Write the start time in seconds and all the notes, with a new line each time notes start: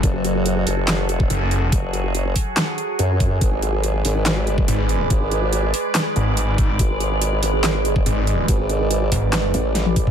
Already playing: F#3 F#4 G#4 A4
0.03 F#1, kick, closed hi-hat
0.25 closed hi-hat
0.46 closed hi-hat
0.67 F#1, open hi-hat
0.88 snare, clap, closed hi-hat
1.09 F1, closed hi-hat
1.20 kick
1.30 F#1, closed hi-hat
1.51 closed hi-hat
1.72 F#1, kick, closed hi-hat
1.93 closed hi-hat
2.15 closed hi-hat
2.36 kick, open hi-hat
2.57 snare, clap, closed hi-hat
2.78 closed hi-hat
2.99 F#2, closed hi-hat
3.20 kick, closed hi-hat
3.41 G#1 G#3 B4 D5, kick, closed hi-hat
3.62 closed hi-hat
3.84 closed hi-hat
4.05 G#1, open hi-hat
4.26 snare, clap, closed hi-hat
4.47 G1, closed hi-hat
4.58 kick
4.68 G#1, closed hi-hat
4.89 closed hi-hat
5.10 G#1, kick, closed hi-hat
5.31 closed hi-hat
5.53 closed hi-hat
5.74 open hi-hat
5.95 snare, clap, closed hi-hat
6.16 G#1, closed hi-hat
6.37 closed hi-hat
6.58 G#1, kick, closed hi-hat
6.79 G#1, kick, closed hi-hat
7.00 closed hi-hat
7.22 closed hi-hat
7.43 G#1, open hi-hat
7.64 snare, clap, closed hi-hat
7.85 G1, closed hi-hat
7.96 kick
8.06 G#1, closed hi-hat
8.27 closed hi-hat
8.48 G#1, kick, closed hi-hat
8.69 closed hi-hat
8.91 closed hi-hat
9.12 G#1, kick, open hi-hat
9.33 snare, clap, closed hi-hat
9.54 A1, closed hi-hat
9.75 snare, closed hi-hat
9.86 high tom
9.96 kick, closed hi-hat
10.07 mid tom